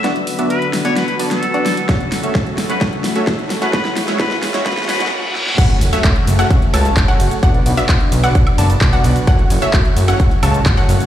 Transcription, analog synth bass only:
\new Staff \with { instrumentName = "Analog synth bass" } { \clef bass \time 4/4 \key fis \minor \tempo 4 = 130 r1 | r1 | r1 | fis,,8 fis,,8 fis,,8 fis,,8 fis,,8 cis,8 fis,,8 fis,,8 |
b,,8 b,,8 b,,8 b,,8 b,,8 fis,,8 b,,8 b,,8 | fis,,8 fis,,8 fis,,8 fis,,8 fis,,8 cis,8 fis,,8 fis,,8 | }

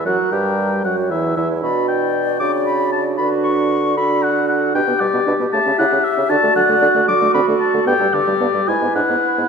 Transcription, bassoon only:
\new Staff \with { instrumentName = "Bassoon" } { \clef bass \time 6/8 \key b \minor \tempo 4. = 77 fis,8 g,4 fis,8 e,8 e,8 | b,4. cis4. | d2. | \key d \major b,16 b,16 b,16 b,16 b,16 b,16 cis16 cis16 cis16 cis16 r16 cis16 |
d16 d16 d16 d16 d16 d16 d16 d16 d16 d16 r16 d16 | g,16 g,16 g,16 g,16 g,16 g,16 gis,16 gis,16 gis,16 gis,16 r16 gis,16 | }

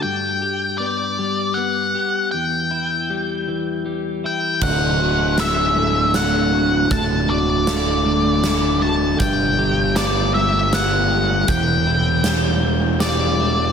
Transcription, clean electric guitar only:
\new Staff \with { instrumentName = "Clean electric guitar" } { \clef bass \time 3/4 \key d \major \tempo 4 = 79 g,8 g'8 b8 g8 b8 g'8 | e,8 e'8 g8 e8 g8 e'8 | d,8 fis'8 d8 a,8 d8 fis'8 | d,8 fis'8 a8 d8 a8 fis'8 |
g,8 g'8 b8 g8 b8 g'8 | e,8 e'8 g8 e8 g8 e'8 | }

